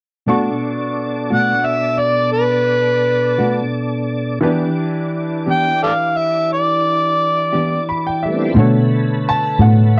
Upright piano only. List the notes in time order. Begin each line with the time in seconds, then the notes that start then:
0.28 B2 D4 F#4 A4 C#6
4.41 E3 D4 G4 B4
7.89 B5
8.07 G5
8.23 E5
8.57 D3 A3 C#5
9.29 A5
9.62 F#5